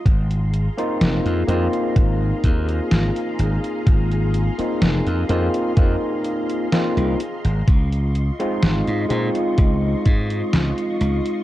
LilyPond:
<<
  \new Staff \with { instrumentName = "String machine" } { \time 4/4 \key aes \major \tempo 4 = 63 << { <aes' f''>1~ | <aes' f''>1 | <f' ees'' des'''>1 | } \\ { <bes'' c'''>1~ | <bes'' c'''>1~ | <bes'' c'''>1 | } >> }
  \new Staff \with { instrumentName = "Tine electric piano" } { \time 4/4 \key aes \major r8. <bes c' ees' f'>8. <bes c' ees' f'>2~ <bes c' ees' f'>8~ | <bes c' ees' f'>8. <bes c' ees' f'>8. <bes c' ees' f'>8 <bes c' ees' f'>4 <bes c' ees' f'>8 r8 | r8. <aes c' ees' f'>8. <aes c' ees' f'>2~ <aes c' ees' f'>8 | }
  \new Staff \with { instrumentName = "Slap bass" } { \clef bass \time 4/4 \key aes \major aes,,8. r16 f,,16 f,16 f,16 r16 aes,,16 r16 ees,16 r16 aes,,16 r16 aes,,16 r16 | aes,,8. r16 f,,16 f,16 f,16 r16 f,16 r4 c,16 r16 aes,,16 | des,8. r16 aes,,16 aes,16 bes,16 r16 des,16 r16 aes,16 r16 des,16 r16 des,16 r16 | }
  \new DrumStaff \with { instrumentName = "Drums" } \drummode { \time 4/4 <hh bd>16 hh16 hh16 hh16 <hh sn>16 hh16 hh16 hh16 <hh bd>8 <hh bd>16 hh16 <hh sn>16 hh16 hh16 hh16 | <hh bd>16 hh16 hh16 hh16 <hh sn>16 hh16 hh16 hh16 <hh bd>8 hh16 hh16 <hh sn>16 hh16 hh16 hh16 | <hh bd>16 hh16 hh16 hh16 <hh sn>16 hh16 hh16 hh16 <hh bd>8 <hh bd>16 hh16 <hh sn>16 hh16 hh16 hh16 | }
>>